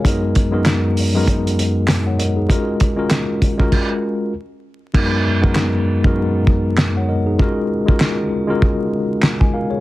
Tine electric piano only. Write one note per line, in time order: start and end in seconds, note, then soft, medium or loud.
0.00 0.33 F#2 medium
0.00 0.21 G#4 medium
0.00 0.20 C#5 medium
0.04 0.33 G#3 medium
0.04 0.34 B3 medium
0.04 0.34 D#4 medium
0.04 0.34 F#4 medium
0.04 0.35 A#4 medium
0.51 0.89 F#2 medium
0.51 0.89 G#3 medium
0.51 0.89 B3 medium
0.51 0.90 D#4 medium
0.51 0.90 F#4 medium
0.51 0.90 A#4 medium
1.14 1.88 F#2 medium
1.14 1.88 G#3 medium
1.14 1.89 B3 medium
1.14 1.59 D#4 medium
1.14 1.59 F#4 medium
1.14 1.59 A#4 medium
2.07 2.19 C#5 medium
2.07 2.19 F#5 medium
2.19 2.36 A#4 medium
2.19 2.36 D#5 medium
2.36 2.66 D#4 medium
2.36 2.65 G#4 medium
2.49 2.78 G#3 medium
2.49 2.78 C#4 medium
2.49 2.79 F4 medium
2.49 2.79 F#4 medium
2.49 2.79 A#4 loud
2.96 3.34 G#3 medium
2.96 3.34 C#4 medium
2.96 3.35 F4 medium
2.96 3.35 F#4 medium
2.96 3.35 A#4 medium
3.58 4.32 G#3 medium
3.58 4.32 C#4 medium
3.58 4.33 F4 medium
3.58 4.33 F#4 medium
3.58 4.33 A#4 loud
4.94 5.23 F#2 medium
4.94 5.23 G#3 medium
4.94 5.23 B3 medium
4.94 5.24 D#4 medium
4.94 5.24 F#4 medium
4.94 5.24 A#4 medium
5.41 5.79 F#2 medium
5.41 5.79 G#3 medium
5.41 5.79 B3 medium
5.41 5.79 D#4 medium
5.41 5.80 F#4 medium
5.41 5.80 A#4 medium
6.04 6.78 F#2 medium
6.04 6.78 G#3 medium
6.04 6.78 B3 medium
6.04 6.48 D#4 medium
6.04 6.49 F#4 medium
6.04 6.49 A#4 loud
6.97 7.09 C#5 medium
6.97 7.08 F#5 medium
7.09 7.26 A#4 medium
7.09 7.26 D#5 medium
7.26 7.56 D#4 medium
7.26 7.55 G#4 medium
7.39 7.68 G#3 medium
7.39 7.68 C#4 medium
7.39 7.69 F4 medium
7.39 7.69 F#4 medium
7.39 7.69 A#4 loud
7.86 8.24 G#3 medium
7.86 8.24 C#4 medium
7.86 8.24 F4 medium
7.86 8.25 F#4 medium
7.86 8.25 A#4 medium
8.47 9.22 G#3 medium
8.47 9.22 C#4 medium
8.47 9.23 F4 medium
8.47 9.23 F#4 medium
8.47 9.23 A#4 loud
9.40 9.53 D#5 medium
9.40 9.53 G#5 medium
9.54 9.71 A#4 medium
9.54 9.71 F5 medium
9.70 9.80 G#4 medium
9.70 9.80 C#5 medium